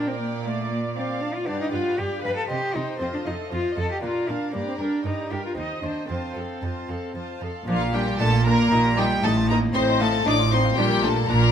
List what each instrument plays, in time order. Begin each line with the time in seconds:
Already playing: lute A#2 A#3 D4, cello section A#2, viola section A#4, violin section D5 G5
0.07 cello C4
0.19 cello A#3
0.44 cello A3, viola section D5, violin section F5
0.70 cello A#3
0.96 cello C4, viola section D5, violin section F5
1.21 cello D4
1.35 cello F4
1.45 cello section G2, lute G2 B3 D4, cello D4, viola section G4, violin section D5 F5
1.61 cello D#4
1.72 cello section G2, lute G2, cello F4, viola section B4, violin section F5 G5
1.98 cello section G2, lute G2, viola section G4, cello G4, violin section D5 F5
2.24 cello section G2, lute G2, cello B4, viola section B4, violin section F5 G5
2.36 cello A4
2.47 cello section C3, lute C3 C4 D#4, cello G4, viola section G4, violin section D#5 C6
2.75 cello section C3, lute C3, cello D#4, violin section C5 G5, viola section C5
2.97 cello section F2, lute A3 C4, cello C4, viola section F4, violin section C5 D#5
3.02 lute F2
3.14 cello D4
3.25 cello section F2, lute F2, cello D#4, viola section A4, violin section D#5 F5
3.51 cello section F2, lute F2, cello F4, viola section F4, violin section C5 D#5
3.77 cello section F2, lute F2, cello A4, viola section A4, violin section D#5 F5
3.92 cello G4
4.01 cello section A#2, lute A#2 A#3 D4, viola section F4, cello F4, violin section D5 A#5
4.28 cello section A#2, lute A#2, cello D4, viola section A#4, violin section F5
4.52 cello section G2, lute G2 A#3 D4, cello A#3, viola section G4, violin section D5 A#5
4.68 cello C4
4.79 cello section G2, lute G2, cello D4, violin section A#4 G5, viola section A#4
5.05 cello section G2, lute G2, cello D#4, viola section G4, violin section D5 A#5
5.31 cello section G2, lute G2, cello G4, violin section A#4 G5, viola section A#4
5.45 cello F4
5.55 cello section D#2, lute D#2 C4, cello D#4, violin section C5 D#5, viola section D#5
5.83 cello section D#2, lute D#2, cello D4, viola section C5, violin section D#5 G5
6.06 cello section F2, lute A3 C4, cello C4, violin section A5
6.10 lute F2, viola section F4, violin section C5
6.35 cello section F2, lute F2, viola section A4, violin section A4 F5
6.62 cello section F2, lute F2, viola section F4, violin section C5 A5
6.89 cello section F2, lute F2, viola section A4, violin section A4 F5
7.15 cello section F2, lute F2, viola section F4, violin section C5 A5
7.41 lute F2, cello section F2, viola section A4, violin section A4 F5
7.67 double bass section A#1, cello section A#2, lute A#2, cello F3, viola section D4, violin section F4 F5
7.81 lute A#4
7.93 cello G3, viola section D4, lute F4, violin section G4 G5
8.07 lute A#3
8.19 double bass section A#1, cello section A#2, lute A#2 D4, cello A3, viola section D4, violin section A4 A5
8.33 lute F4
8.45 cello A#3, viola section D4, lute A#4, violin section A#4 A#5
8.58 lute D4
8.71 double bass section A#1, lute A#2, cello section A#2, viola section D#4
8.84 lute G4
8.97 cello G3, viola section D#4, lute D#4, violin section G4 G5
9.23 double bass section A1, cello section A2, lute A2, cello A3, viola section D#4, violin section A4 A5
9.36 lute F4
9.49 cello A#3, viola section D#4, lute D#4, violin section A#4 A#5
9.74 double bass section A1, cello section A2, lute A2 C4, cello C4, viola section D#4, violin section C5 C6
9.87 lute D#4
10.00 cello A3, viola section D#4, lute F4, violin section A4 A5
10.12 lute C4
10.26 double bass section A1, lute A2 D#4, cello section A2, cello D4, viola section D#4, violin section D5 D6
10.39 lute F4
10.51 cello C4, lute D#4, viola section D#4, violin section C5 C6
10.64 lute F4
10.77 double bass section A#1, lute A#2, cello section A#2, cello G3, viola section D4, violin section G4 G5
10.90 lute A#4
11.03 cello A3, viola section D4, lute F4, violin section A4 A5
11.16 lute A#3
11.29 double bass section A#1, cello section A#2, lute A#2 D4, cello A#3, viola section D4, violin section A#4 A#5
11.42 lute F4